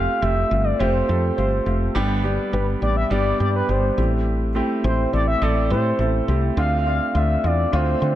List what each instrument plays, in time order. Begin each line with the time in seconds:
Already playing: grand piano A3 C4 F4 G4, analog synth lead F5
0.21 fretless electric bass F1, grand piano A3 C4 F4 G4, analog synth lead E5
0.50 fretless electric bass G1, grand piano A3 C4 F4 G4
0.64 analog synth lead D5
0.79 fretless electric bass F1, grand piano A3 C4 F4 G4, analog synth lead C5
1.08 fretless electric bass F2, grand piano A3 C4 F4 A4
1.37 fretless electric bass G1, grand piano A3 C4 F4 G4, analog synth lead C5
1.66 fretless electric bass F1, grand piano A3 C4 F4 G4
1.95 fretless electric bass G1, grand piano G3 B3 D4 G4
2.23 grand piano G3 B3 D4 G4
2.52 fretless electric bass G1, grand piano G3 B3 D4 G4, analog synth lead B4
2.81 fretless electric bass A1, grand piano G3 B3 D4 G4, analog synth lead D5
2.97 analog synth lead E5
3.10 fretless electric bass G1, grand piano G3 B3 D4 G4, analog synth lead D5
3.39 fretless electric bass G2, grand piano G3 B3 D4 G4, analog synth lead D5
3.56 analog synth lead B4
3.68 fretless electric bass G1, grand piano G3 B3 D4 G4, analog synth lead C5
3.97 fretless electric bass A1, grand piano A3 C4 E4 G4
4.55 grand piano A3 C4 E4 G4
4.84 fretless electric bass A1, grand piano A3 C4 E4 G4, analog synth lead C5
5.13 fretless electric bass A1, grand piano A3 C4 E4 A4, analog synth lead D5
5.28 analog synth lead E5
5.42 fretless electric bass A1, grand piano A3 C4 E4 A4, analog synth lead D5
5.70 fretless electric bass A2, grand piano A3 C4 E4 G4, analog synth lead C5
5.99 fretless electric bass A1, grand piano A3 C4 E4 A4
6.28 fretless electric bass C2, grand piano A3 C4 E4 G4
6.57 fretless electric bass D2, grand piano A3 C4 D4 F4, analog synth lead F5
6.86 grand piano A3 C4 D4 F4
7.14 fretless electric bass D2, grand piano A3 C4 D4 F4, analog synth lead E5
7.43 fretless electric bass E2, grand piano A3 C4 D4 F4, analog synth lead D5
7.72 fretless electric bass D2, grand piano A3 C4 D4 F4, analog synth lead C5
8.01 fretless electric bass D3, grand piano A3 C4 D4 F4